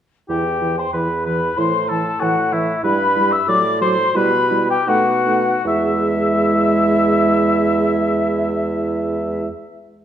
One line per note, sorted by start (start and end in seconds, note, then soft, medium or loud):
0.29 0.86 E2 soft
0.29 0.44 E3 soft
0.29 0.44 E4 soft
0.29 0.74 G4 soft
0.29 0.80 G5 medium
0.61 0.76 E3 soft
0.61 0.75 E4 soft
0.77 0.92 C5 soft
0.77 0.95 C6 medium
0.93 1.50 E2 soft
0.93 1.08 E3 soft
0.93 1.08 E4 soft
0.93 1.25 B4 soft
0.93 1.26 B5 soft
1.25 1.40 E3 soft
1.25 1.40 E4 soft
1.25 1.59 B4 medium
1.25 1.60 B5 medium
1.57 2.13 A2 soft
1.57 1.72 E3 soft
1.57 1.72 E4 soft
1.57 1.90 C5 soft
1.57 1.90 C6 medium
1.88 2.04 E3 soft
1.88 2.03 E4 soft
1.88 2.21 A4 medium
1.88 2.23 A5 medium
2.20 2.76 A2 medium
2.20 2.36 E3 soft
2.20 2.35 E4 soft
2.20 2.53 F#4 medium
2.20 2.54 F#5 medium
2.52 2.67 E3 soft
2.52 2.66 E4 soft
2.52 2.83 E4 medium
2.52 2.83 E5 medium
2.83 3.40 G2 medium
2.83 2.99 G3 medium
2.83 2.98 E4 medium
2.83 3.34 B4 medium
2.83 3.33 B5 medium
3.15 3.31 G3 medium
3.15 3.30 E4 soft
3.32 3.48 E5 medium
3.32 3.49 E6 medium
3.47 4.07 A2 medium
3.47 3.63 F#3 medium
3.47 3.62 F#4 medium
3.47 3.81 D5 medium
3.47 3.80 D6 medium
3.80 3.97 F#3 medium
3.80 3.96 F#4 medium
3.80 4.17 C5 medium
3.80 4.14 C6 medium
4.14 4.79 B2 medium
4.14 4.32 G3 medium
4.14 4.30 E4 medium
4.14 4.69 B4 medium
4.14 4.68 B5 loud
4.49 4.67 G3 soft
4.49 4.65 E4 medium
4.69 4.90 G4 medium
4.69 4.87 G5 medium
4.87 5.56 B2 medium
4.87 5.04 A3 medium
4.87 5.03 D#4 medium
4.87 5.66 F#4 medium
4.87 5.64 F#5 medium
5.25 5.42 A3 soft
5.25 5.41 D#4 soft
5.65 9.47 E2 medium
5.65 9.47 G#3 medium
5.65 9.47 E4 medium
5.65 9.47 E5 medium
5.65 9.48 E5 medium